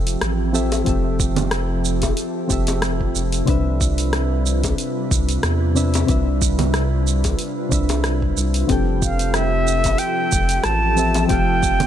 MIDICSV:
0, 0, Header, 1, 6, 480
1, 0, Start_track
1, 0, Tempo, 652174
1, 640, Time_signature, 4, 2, 24, 8
1, 8736, End_track
2, 0, Start_track
2, 0, Title_t, "Flute"
2, 0, Program_c, 0, 73
2, 6649, Note_on_c, 0, 77, 76
2, 6882, Note_on_c, 0, 76, 89
2, 6893, Note_off_c, 0, 77, 0
2, 7350, Note_on_c, 0, 79, 101
2, 7361, Note_off_c, 0, 76, 0
2, 7831, Note_on_c, 0, 81, 100
2, 7842, Note_off_c, 0, 79, 0
2, 8298, Note_off_c, 0, 81, 0
2, 8302, Note_on_c, 0, 79, 111
2, 8736, Note_off_c, 0, 79, 0
2, 8736, End_track
3, 0, Start_track
3, 0, Title_t, "Synth keys"
3, 0, Program_c, 1, 88
3, 0, Control_c, 1, 64, 127
3, 0, Note_on_c, 1, 53, 88
3, 0, Note_on_c, 1, 60, 74
3, 0, Note_on_c, 1, 67, 78
3, 0, Note_on_c, 1, 69, 77
3, 0, Note_on_c, 1, 76, 91
3, 362, Note_off_c, 1, 53, 0
3, 366, Note_off_c, 1, 60, 0
3, 371, Note_off_c, 1, 67, 0
3, 375, Note_off_c, 1, 69, 0
3, 380, Note_off_c, 1, 76, 0
3, 388, Note_on_c, 1, 53, 73
3, 392, Note_on_c, 1, 60, 69
3, 397, Note_on_c, 1, 67, 67
3, 401, Note_on_c, 1, 69, 71
3, 405, Note_on_c, 1, 76, 84
3, 607, Note_off_c, 1, 53, 0
3, 610, Note_off_c, 1, 60, 0
3, 612, Note_off_c, 1, 67, 0
3, 614, Note_off_c, 1, 69, 0
3, 616, Note_off_c, 1, 76, 0
3, 619, Note_on_c, 1, 53, 75
3, 627, Note_on_c, 1, 60, 65
3, 637, Note_on_c, 1, 67, 70
3, 648, Note_on_c, 1, 69, 67
3, 656, Note_on_c, 1, 76, 76
3, 1803, Note_off_c, 1, 53, 0
3, 1807, Note_off_c, 1, 60, 0
3, 1812, Note_off_c, 1, 67, 0
3, 1818, Note_off_c, 1, 69, 0
3, 1821, Note_off_c, 1, 76, 0
3, 1822, Note_on_c, 1, 53, 69
3, 1830, Note_on_c, 1, 60, 67
3, 1838, Note_on_c, 1, 67, 67
3, 1849, Note_on_c, 1, 69, 66
3, 1859, Note_on_c, 1, 76, 82
3, 2525, Note_off_c, 1, 53, 0
3, 2529, Note_off_c, 1, 60, 0
3, 2533, Note_off_c, 1, 67, 0
3, 2538, Note_off_c, 1, 69, 0
3, 2539, Note_on_c, 1, 48, 80
3, 2543, Note_off_c, 1, 76, 0
3, 2549, Note_on_c, 1, 60, 78
3, 2558, Note_on_c, 1, 62, 76
3, 2568, Note_on_c, 1, 71, 81
3, 2571, Control_c, 1, 64, 0
3, 2578, Note_on_c, 1, 76, 95
3, 2697, Control_c, 1, 64, 127
3, 4203, Note_off_c, 1, 48, 0
3, 4208, Note_off_c, 1, 60, 0
3, 4213, Note_off_c, 1, 62, 0
3, 4218, Note_off_c, 1, 71, 0
3, 4223, Note_off_c, 1, 76, 0
3, 4229, Note_on_c, 1, 48, 72
3, 4235, Note_on_c, 1, 60, 67
3, 4239, Note_on_c, 1, 62, 67
3, 4244, Note_on_c, 1, 71, 64
3, 4248, Note_on_c, 1, 76, 77
3, 4448, Note_off_c, 1, 48, 0
3, 4451, Note_off_c, 1, 60, 0
3, 4453, Note_off_c, 1, 62, 0
3, 4456, Note_off_c, 1, 71, 0
3, 4458, Note_off_c, 1, 76, 0
3, 4460, Note_on_c, 1, 48, 75
3, 4469, Note_on_c, 1, 60, 69
3, 4478, Note_on_c, 1, 62, 70
3, 4487, Note_on_c, 1, 71, 70
3, 4498, Note_on_c, 1, 76, 80
3, 5644, Note_off_c, 1, 48, 0
3, 5648, Note_off_c, 1, 60, 0
3, 5653, Note_off_c, 1, 62, 0
3, 5657, Note_off_c, 1, 71, 0
3, 5658, Note_on_c, 1, 48, 71
3, 5662, Note_off_c, 1, 76, 0
3, 5669, Note_on_c, 1, 60, 71
3, 5679, Note_on_c, 1, 62, 68
3, 5687, Note_on_c, 1, 71, 62
3, 5697, Note_on_c, 1, 76, 80
3, 6363, Note_off_c, 1, 48, 0
3, 6368, Note_off_c, 1, 60, 0
3, 6373, Note_off_c, 1, 62, 0
3, 6377, Note_off_c, 1, 71, 0
3, 6382, Note_off_c, 1, 76, 0
3, 6384, Note_on_c, 1, 53, 85
3, 6391, Note_on_c, 1, 60, 74
3, 6402, Note_on_c, 1, 67, 79
3, 6410, Control_c, 1, 64, 0
3, 6411, Note_on_c, 1, 69, 77
3, 6419, Note_on_c, 1, 79, 94
3, 6531, Control_c, 1, 64, 127
3, 8046, Note_off_c, 1, 53, 0
3, 8049, Note_off_c, 1, 60, 0
3, 8055, Note_off_c, 1, 67, 0
3, 8059, Note_off_c, 1, 69, 0
3, 8063, Note_off_c, 1, 79, 0
3, 8068, Note_on_c, 1, 53, 72
3, 8074, Note_on_c, 1, 60, 66
3, 8078, Note_on_c, 1, 67, 67
3, 8082, Note_on_c, 1, 69, 70
3, 8089, Note_on_c, 1, 76, 83
3, 8288, Note_off_c, 1, 53, 0
3, 8291, Note_off_c, 1, 60, 0
3, 8293, Note_off_c, 1, 67, 0
3, 8295, Note_off_c, 1, 69, 0
3, 8297, Note_on_c, 1, 53, 75
3, 8298, Note_off_c, 1, 76, 0
3, 8307, Note_on_c, 1, 60, 70
3, 8317, Note_on_c, 1, 67, 72
3, 8325, Note_on_c, 1, 69, 71
3, 8334, Note_on_c, 1, 77, 86
3, 8736, Note_off_c, 1, 53, 0
3, 8736, Note_off_c, 1, 60, 0
3, 8736, Note_off_c, 1, 67, 0
3, 8736, Note_off_c, 1, 69, 0
3, 8736, Note_off_c, 1, 77, 0
3, 8736, End_track
4, 0, Start_track
4, 0, Title_t, "Ambient pad"
4, 0, Program_c, 2, 92
4, 0, Note_on_c, 2, 53, 71
4, 0, Note_on_c, 2, 60, 71
4, 0, Note_on_c, 2, 65, 71
4, 0, Note_on_c, 2, 67, 68
4, 0, Note_on_c, 2, 69, 80
4, 2530, Note_off_c, 2, 60, 0
4, 2530, Note_off_c, 2, 67, 0
4, 2531, Note_off_c, 2, 53, 0
4, 2531, Note_off_c, 2, 69, 0
4, 2566, Note_on_c, 2, 48, 74
4, 2567, Note_on_c, 2, 55, 71
4, 2567, Note_on_c, 2, 62, 69
4, 2567, Note_on_c, 2, 71, 68
4, 6373, Note_off_c, 2, 48, 0
4, 6374, Note_off_c, 2, 55, 0
4, 6374, Note_off_c, 2, 62, 0
4, 6374, Note_off_c, 2, 71, 0
4, 6403, Note_on_c, 2, 53, 73
4, 6404, Note_on_c, 2, 69, 80
4, 6406, Note_on_c, 2, 60, 71
4, 6407, Note_on_c, 2, 67, 68
4, 8736, Note_off_c, 2, 53, 0
4, 8736, Note_off_c, 2, 60, 0
4, 8736, Note_off_c, 2, 65, 0
4, 8736, Note_off_c, 2, 67, 0
4, 8736, Note_off_c, 2, 69, 0
4, 8736, End_track
5, 0, Start_track
5, 0, Title_t, "Analog synth bass"
5, 0, Program_c, 3, 38
5, 0, Note_on_c, 3, 29, 79
5, 123, Note_off_c, 3, 29, 0
5, 162, Note_on_c, 3, 33, 93
5, 610, Note_off_c, 3, 33, 0
5, 640, Note_on_c, 3, 29, 99
5, 1569, Note_off_c, 3, 29, 0
5, 1842, Note_on_c, 3, 29, 95
5, 2290, Note_off_c, 3, 29, 0
5, 2323, Note_on_c, 3, 29, 96
5, 2522, Note_off_c, 3, 29, 0
5, 2562, Note_on_c, 3, 36, 97
5, 3490, Note_off_c, 3, 36, 0
5, 3764, Note_on_c, 3, 36, 86
5, 3963, Note_off_c, 3, 36, 0
5, 4001, Note_on_c, 3, 40, 100
5, 4450, Note_off_c, 3, 40, 0
5, 4484, Note_on_c, 3, 36, 99
5, 5411, Note_off_c, 3, 36, 0
5, 5680, Note_on_c, 3, 36, 102
5, 6129, Note_off_c, 3, 36, 0
5, 6164, Note_on_c, 3, 36, 93
5, 6363, Note_off_c, 3, 36, 0
5, 6401, Note_on_c, 3, 29, 104
5, 7329, Note_off_c, 3, 29, 0
5, 7600, Note_on_c, 3, 29, 85
5, 7801, Note_off_c, 3, 29, 0
5, 7839, Note_on_c, 3, 33, 97
5, 8289, Note_off_c, 3, 33, 0
5, 8321, Note_on_c, 3, 29, 99
5, 8736, Note_off_c, 3, 29, 0
5, 8736, End_track
6, 0, Start_track
6, 0, Title_t, "Drums"
6, 50, Note_on_c, 9, 46, 52
6, 57, Note_on_c, 9, 82, 40
6, 123, Note_off_c, 9, 46, 0
6, 130, Note_off_c, 9, 82, 0
6, 158, Note_on_c, 9, 37, 101
6, 158, Note_on_c, 9, 46, 47
6, 165, Note_on_c, 9, 82, 32
6, 232, Note_off_c, 9, 37, 0
6, 232, Note_off_c, 9, 46, 0
6, 238, Note_off_c, 9, 82, 0
6, 403, Note_on_c, 9, 82, 68
6, 477, Note_off_c, 9, 82, 0
6, 529, Note_on_c, 9, 46, 53
6, 531, Note_on_c, 9, 60, 57
6, 536, Note_on_c, 9, 82, 39
6, 603, Note_off_c, 9, 46, 0
6, 604, Note_off_c, 9, 60, 0
6, 609, Note_off_c, 9, 82, 0
6, 635, Note_on_c, 9, 46, 39
6, 641, Note_on_c, 9, 36, 111
6, 642, Note_on_c, 9, 82, 31
6, 709, Note_off_c, 9, 46, 0
6, 714, Note_off_c, 9, 36, 0
6, 716, Note_off_c, 9, 82, 0
6, 881, Note_on_c, 9, 36, 105
6, 883, Note_on_c, 9, 82, 73
6, 955, Note_off_c, 9, 36, 0
6, 957, Note_off_c, 9, 82, 0
6, 1004, Note_on_c, 9, 46, 49
6, 1004, Note_on_c, 9, 64, 69
6, 1011, Note_on_c, 9, 82, 43
6, 1078, Note_off_c, 9, 46, 0
6, 1078, Note_off_c, 9, 64, 0
6, 1085, Note_off_c, 9, 82, 0
6, 1113, Note_on_c, 9, 37, 101
6, 1113, Note_on_c, 9, 46, 42
6, 1120, Note_on_c, 9, 82, 30
6, 1187, Note_off_c, 9, 37, 0
6, 1187, Note_off_c, 9, 46, 0
6, 1194, Note_off_c, 9, 82, 0
6, 1361, Note_on_c, 9, 82, 77
6, 1435, Note_off_c, 9, 82, 0
6, 1485, Note_on_c, 9, 46, 52
6, 1492, Note_on_c, 9, 82, 43
6, 1493, Note_on_c, 9, 36, 61
6, 1494, Note_on_c, 9, 60, 53
6, 1558, Note_off_c, 9, 46, 0
6, 1565, Note_off_c, 9, 82, 0
6, 1566, Note_off_c, 9, 36, 0
6, 1567, Note_off_c, 9, 60, 0
6, 1597, Note_on_c, 9, 46, 44
6, 1603, Note_on_c, 9, 82, 33
6, 1670, Note_off_c, 9, 46, 0
6, 1677, Note_off_c, 9, 82, 0
6, 1841, Note_on_c, 9, 36, 94
6, 1841, Note_on_c, 9, 82, 75
6, 1914, Note_off_c, 9, 82, 0
6, 1915, Note_off_c, 9, 36, 0
6, 1965, Note_on_c, 9, 46, 54
6, 1972, Note_on_c, 9, 82, 42
6, 1974, Note_on_c, 9, 60, 62
6, 2039, Note_off_c, 9, 46, 0
6, 2045, Note_off_c, 9, 82, 0
6, 2048, Note_off_c, 9, 60, 0
6, 2076, Note_on_c, 9, 37, 97
6, 2076, Note_on_c, 9, 46, 42
6, 2083, Note_on_c, 9, 82, 31
6, 2149, Note_off_c, 9, 37, 0
6, 2149, Note_off_c, 9, 46, 0
6, 2156, Note_off_c, 9, 82, 0
6, 2213, Note_on_c, 9, 36, 57
6, 2286, Note_off_c, 9, 36, 0
6, 2322, Note_on_c, 9, 82, 75
6, 2395, Note_off_c, 9, 82, 0
6, 2447, Note_on_c, 9, 46, 51
6, 2454, Note_on_c, 9, 82, 45
6, 2521, Note_off_c, 9, 46, 0
6, 2527, Note_off_c, 9, 82, 0
6, 2557, Note_on_c, 9, 46, 37
6, 2562, Note_on_c, 9, 36, 112
6, 2564, Note_on_c, 9, 82, 33
6, 2631, Note_off_c, 9, 46, 0
6, 2636, Note_off_c, 9, 36, 0
6, 2638, Note_off_c, 9, 82, 0
6, 2803, Note_on_c, 9, 36, 97
6, 2805, Note_on_c, 9, 82, 81
6, 2877, Note_off_c, 9, 36, 0
6, 2879, Note_off_c, 9, 82, 0
6, 2930, Note_on_c, 9, 46, 46
6, 2937, Note_on_c, 9, 82, 42
6, 3003, Note_off_c, 9, 46, 0
6, 3010, Note_off_c, 9, 82, 0
6, 3039, Note_on_c, 9, 37, 93
6, 3039, Note_on_c, 9, 46, 42
6, 3046, Note_on_c, 9, 82, 30
6, 3113, Note_off_c, 9, 37, 0
6, 3113, Note_off_c, 9, 46, 0
6, 3119, Note_off_c, 9, 82, 0
6, 3284, Note_on_c, 9, 82, 75
6, 3358, Note_off_c, 9, 82, 0
6, 3412, Note_on_c, 9, 46, 48
6, 3414, Note_on_c, 9, 36, 61
6, 3418, Note_on_c, 9, 60, 49
6, 3418, Note_on_c, 9, 82, 44
6, 3485, Note_off_c, 9, 46, 0
6, 3488, Note_off_c, 9, 36, 0
6, 3491, Note_off_c, 9, 60, 0
6, 3492, Note_off_c, 9, 82, 0
6, 3521, Note_on_c, 9, 46, 42
6, 3528, Note_on_c, 9, 82, 35
6, 3595, Note_off_c, 9, 46, 0
6, 3602, Note_off_c, 9, 82, 0
6, 3763, Note_on_c, 9, 36, 99
6, 3767, Note_on_c, 9, 82, 75
6, 3837, Note_off_c, 9, 36, 0
6, 3841, Note_off_c, 9, 82, 0
6, 3890, Note_on_c, 9, 46, 51
6, 3897, Note_on_c, 9, 82, 44
6, 3964, Note_off_c, 9, 46, 0
6, 3971, Note_off_c, 9, 82, 0
6, 3998, Note_on_c, 9, 37, 97
6, 3998, Note_on_c, 9, 46, 42
6, 4005, Note_on_c, 9, 82, 33
6, 4071, Note_off_c, 9, 37, 0
6, 4071, Note_off_c, 9, 46, 0
6, 4078, Note_off_c, 9, 82, 0
6, 4242, Note_on_c, 9, 82, 77
6, 4316, Note_off_c, 9, 82, 0
6, 4370, Note_on_c, 9, 46, 53
6, 4377, Note_on_c, 9, 82, 45
6, 4380, Note_on_c, 9, 60, 66
6, 4444, Note_off_c, 9, 46, 0
6, 4450, Note_off_c, 9, 82, 0
6, 4454, Note_off_c, 9, 60, 0
6, 4478, Note_on_c, 9, 46, 37
6, 4483, Note_on_c, 9, 36, 112
6, 4485, Note_on_c, 9, 82, 31
6, 4552, Note_off_c, 9, 46, 0
6, 4557, Note_off_c, 9, 36, 0
6, 4559, Note_off_c, 9, 82, 0
6, 4723, Note_on_c, 9, 36, 96
6, 4724, Note_on_c, 9, 82, 78
6, 4797, Note_off_c, 9, 36, 0
6, 4798, Note_off_c, 9, 82, 0
6, 4849, Note_on_c, 9, 46, 47
6, 4849, Note_on_c, 9, 64, 66
6, 4856, Note_on_c, 9, 82, 42
6, 4923, Note_off_c, 9, 46, 0
6, 4923, Note_off_c, 9, 64, 0
6, 4929, Note_off_c, 9, 82, 0
6, 4959, Note_on_c, 9, 37, 94
6, 4959, Note_on_c, 9, 46, 39
6, 4966, Note_on_c, 9, 82, 31
6, 5033, Note_off_c, 9, 37, 0
6, 5033, Note_off_c, 9, 46, 0
6, 5039, Note_off_c, 9, 82, 0
6, 5205, Note_on_c, 9, 82, 76
6, 5279, Note_off_c, 9, 82, 0
6, 5329, Note_on_c, 9, 46, 47
6, 5334, Note_on_c, 9, 36, 59
6, 5334, Note_on_c, 9, 60, 48
6, 5336, Note_on_c, 9, 82, 42
6, 5403, Note_off_c, 9, 46, 0
6, 5407, Note_off_c, 9, 60, 0
6, 5408, Note_off_c, 9, 36, 0
6, 5410, Note_off_c, 9, 82, 0
6, 5436, Note_on_c, 9, 46, 43
6, 5443, Note_on_c, 9, 82, 33
6, 5510, Note_off_c, 9, 46, 0
6, 5517, Note_off_c, 9, 82, 0
6, 5682, Note_on_c, 9, 36, 100
6, 5682, Note_on_c, 9, 82, 75
6, 5755, Note_off_c, 9, 36, 0
6, 5756, Note_off_c, 9, 82, 0
6, 5808, Note_on_c, 9, 46, 48
6, 5812, Note_on_c, 9, 60, 61
6, 5815, Note_on_c, 9, 82, 46
6, 5881, Note_off_c, 9, 46, 0
6, 5886, Note_off_c, 9, 60, 0
6, 5888, Note_off_c, 9, 82, 0
6, 5916, Note_on_c, 9, 37, 94
6, 5916, Note_on_c, 9, 46, 40
6, 5923, Note_on_c, 9, 82, 33
6, 5990, Note_off_c, 9, 37, 0
6, 5990, Note_off_c, 9, 46, 0
6, 5996, Note_off_c, 9, 82, 0
6, 6053, Note_on_c, 9, 36, 60
6, 6127, Note_off_c, 9, 36, 0
6, 6162, Note_on_c, 9, 82, 79
6, 6235, Note_off_c, 9, 82, 0
6, 6287, Note_on_c, 9, 46, 49
6, 6294, Note_on_c, 9, 82, 43
6, 6360, Note_off_c, 9, 46, 0
6, 6367, Note_off_c, 9, 82, 0
6, 6396, Note_on_c, 9, 46, 39
6, 6401, Note_on_c, 9, 36, 114
6, 6403, Note_on_c, 9, 82, 28
6, 6470, Note_off_c, 9, 46, 0
6, 6474, Note_off_c, 9, 36, 0
6, 6477, Note_off_c, 9, 82, 0
6, 6640, Note_on_c, 9, 36, 90
6, 6642, Note_on_c, 9, 82, 74
6, 6714, Note_off_c, 9, 36, 0
6, 6716, Note_off_c, 9, 82, 0
6, 6766, Note_on_c, 9, 46, 50
6, 6773, Note_on_c, 9, 82, 41
6, 6840, Note_off_c, 9, 46, 0
6, 6847, Note_off_c, 9, 82, 0
6, 6873, Note_on_c, 9, 37, 89
6, 6873, Note_on_c, 9, 46, 41
6, 6880, Note_on_c, 9, 82, 30
6, 6947, Note_off_c, 9, 37, 0
6, 6947, Note_off_c, 9, 46, 0
6, 6954, Note_off_c, 9, 82, 0
6, 7120, Note_on_c, 9, 82, 73
6, 7194, Note_off_c, 9, 82, 0
6, 7242, Note_on_c, 9, 46, 51
6, 7249, Note_on_c, 9, 82, 42
6, 7251, Note_on_c, 9, 36, 60
6, 7256, Note_on_c, 9, 60, 47
6, 7316, Note_off_c, 9, 46, 0
6, 7322, Note_off_c, 9, 82, 0
6, 7325, Note_off_c, 9, 36, 0
6, 7330, Note_off_c, 9, 60, 0
6, 7348, Note_on_c, 9, 46, 43
6, 7355, Note_on_c, 9, 82, 34
6, 7422, Note_off_c, 9, 46, 0
6, 7429, Note_off_c, 9, 82, 0
6, 7595, Note_on_c, 9, 82, 73
6, 7599, Note_on_c, 9, 36, 99
6, 7669, Note_off_c, 9, 82, 0
6, 7673, Note_off_c, 9, 36, 0
6, 7719, Note_on_c, 9, 46, 49
6, 7726, Note_on_c, 9, 82, 45
6, 7793, Note_off_c, 9, 46, 0
6, 7800, Note_off_c, 9, 82, 0
6, 7828, Note_on_c, 9, 37, 94
6, 7828, Note_on_c, 9, 46, 41
6, 7835, Note_on_c, 9, 82, 33
6, 7901, Note_off_c, 9, 37, 0
6, 7901, Note_off_c, 9, 46, 0
6, 7908, Note_off_c, 9, 82, 0
6, 8076, Note_on_c, 9, 82, 74
6, 8150, Note_off_c, 9, 82, 0
6, 8202, Note_on_c, 9, 46, 51
6, 8208, Note_on_c, 9, 60, 65
6, 8209, Note_on_c, 9, 82, 45
6, 8276, Note_off_c, 9, 46, 0
6, 8281, Note_off_c, 9, 60, 0
6, 8283, Note_off_c, 9, 82, 0
6, 8312, Note_on_c, 9, 46, 39
6, 8319, Note_on_c, 9, 36, 114
6, 8319, Note_on_c, 9, 82, 29
6, 8386, Note_off_c, 9, 46, 0
6, 8393, Note_off_c, 9, 36, 0
6, 8393, Note_off_c, 9, 82, 0
6, 8559, Note_on_c, 9, 36, 96
6, 8561, Note_on_c, 9, 82, 71
6, 8632, Note_off_c, 9, 36, 0
6, 8635, Note_off_c, 9, 82, 0
6, 8685, Note_on_c, 9, 46, 49
6, 8685, Note_on_c, 9, 64, 73
6, 8692, Note_on_c, 9, 82, 39
6, 8736, Note_off_c, 9, 46, 0
6, 8736, Note_off_c, 9, 64, 0
6, 8736, Note_off_c, 9, 82, 0
6, 8736, End_track
0, 0, End_of_file